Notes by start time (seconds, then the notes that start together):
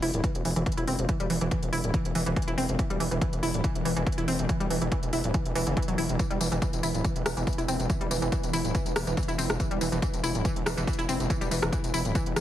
Already playing: E3 B3 E4 B5
0.02 E1 E4, open hi-hat
0.14 D1, closed hi-hat
0.24 E3, kick, closed hi-hat
0.35 E1, closed hi-hat
0.45 E1 E3, open hi-hat
0.56 E1 E3, closed hi-hat
0.66 E3, kick, closed hi-hat
0.72 closed hi-hat
0.77 E1 E4, closed hi-hat
0.87 E1 C4, open hi-hat
0.99 E1, closed hi-hat
1.09 E3, kick, closed hi-hat
1.20 E1 G3, closed hi-hat
1.30 E1 E3, open hi-hat
1.41 E1 E3, closed hi-hat
1.51 E3, kick, closed hi-hat
1.63 E1, closed hi-hat
1.73 E1 E4, open hi-hat
1.84 D1, closed hi-hat
1.94 E3, kick, closed hi-hat
2.05 E1, closed hi-hat
2.15 E1 E3, open hi-hat
2.26 E1 E3, closed hi-hat
2.36 E3, kick, closed hi-hat
2.42 closed hi-hat
2.48 E1 E4, closed hi-hat
2.58 E1 C4, open hi-hat
2.69 E1, closed hi-hat
2.79 E3, kick, closed hi-hat
2.90 E1 G3, closed hi-hat
3.00 E1 E3, open hi-hat
3.11 E1 E3, closed hi-hat
3.21 E3, kick, closed hi-hat
3.33 E1, closed hi-hat
3.43 E1 E4, open hi-hat
3.54 D1, closed hi-hat
3.64 E3, kick, closed hi-hat
3.75 E1, closed hi-hat
3.85 E1 E3, open hi-hat
3.96 E1 E3, closed hi-hat
4.07 E3, kick, closed hi-hat
4.12 closed hi-hat
4.18 E1 E4, closed hi-hat
4.28 E1 C4, open hi-hat
4.39 E1, closed hi-hat
4.49 E3, kick, closed hi-hat
4.60 E1 G3, closed hi-hat
4.70 E1 E3, open hi-hat
4.81 E1 E3, closed hi-hat
4.92 E3, kick, closed hi-hat
5.03 E1, closed hi-hat
5.13 E1 E4, open hi-hat
5.24 D1, closed hi-hat
5.34 E3, kick, closed hi-hat
5.45 E1, closed hi-hat
5.55 E1 E3, open hi-hat
5.67 F#1 E3, closed hi-hat
5.77 E3, kick, closed hi-hat
5.82 closed hi-hat
5.88 E1 F#3, closed hi-hat
5.98 E1 E4, open hi-hat
6.09 E1, closed hi-hat
6.19 E3, kick, closed hi-hat, tambourine
6.30 E1 G3, closed hi-hat
6.41 E1 E3, open hi-hat, tambourine
6.52 E1 E3, closed hi-hat, tambourine
6.62 E3, kick, closed hi-hat, tambourine
6.73 E1, closed hi-hat, tambourine
6.83 E1 E4, open hi-hat, tambourine
6.94 D1, closed hi-hat, tambourine
7.04 E3, kick, closed hi-hat, tambourine
7.16 E1, closed hi-hat
7.26 E1 E3, cross-stick, open hi-hat, tambourine
7.37 E1 E3, closed hi-hat, tambourine
7.47 E3, kick, closed hi-hat, tambourine
7.53 closed hi-hat
7.58 E1 E4, closed hi-hat, tambourine
7.68 E1 C4, open hi-hat, tambourine
7.80 E1, closed hi-hat, tambourine
7.90 E3, kick, closed hi-hat, tambourine
8.01 E1 G3, closed hi-hat
8.11 E1 E3, open hi-hat, tambourine
8.22 E1 E3, closed hi-hat, tambourine
8.32 E3, kick, closed hi-hat, tambourine
8.43 E1, closed hi-hat, tambourine
8.53 E1 E4, open hi-hat, tambourine
8.64 D1, closed hi-hat, tambourine
8.75 E3, kick, closed hi-hat, tambourine
8.86 E1, closed hi-hat, tambourine
8.96 E1 E3, cross-stick, open hi-hat, tambourine
9.07 E1 E3, closed hi-hat, tambourine
9.17 E3, kick, closed hi-hat, tambourine
9.23 closed hi-hat
9.28 E1 E4, closed hi-hat, tambourine
9.38 E1 C4, open hi-hat, tambourine
9.50 E1, cross-stick, closed hi-hat, tambourine
9.60 E3, kick, closed hi-hat, tambourine
9.71 E1 G3, closed hi-hat
9.81 E1 E3, open hi-hat, tambourine
9.92 E1 E3, closed hi-hat, tambourine
10.02 E3, kick, closed hi-hat, tambourine
10.13 E1, closed hi-hat, tambourine
10.24 E1 E4, open hi-hat, tambourine
10.35 D1, closed hi-hat, tambourine
10.45 E3, kick, closed hi-hat, tambourine
10.56 E1, closed hi-hat
10.66 E1 E3, cross-stick, open hi-hat, tambourine
10.77 E1 E3, closed hi-hat, tambourine
10.87 E3, kick, closed hi-hat, tambourine
10.93 closed hi-hat
10.99 E1 E4, closed hi-hat, tambourine
11.09 E1 C4, open hi-hat, tambourine
11.20 E1, closed hi-hat, tambourine
11.30 E3, kick, closed hi-hat, tambourine
11.41 E1 G3, closed hi-hat, tambourine
11.51 E1 E3, open hi-hat, tambourine
11.62 E1 E3, cross-stick, closed hi-hat, tambourine
11.72 E3, kick, closed hi-hat, tambourine
11.84 E1, closed hi-hat, tambourine
11.94 E1 E4, open hi-hat, tambourine
12.05 D1, closed hi-hat, tambourine
12.15 E3, kick, closed hi-hat, tambourine
12.26 E1, closed hi-hat
12.36 E1 E3, cross-stick, open hi-hat, tambourine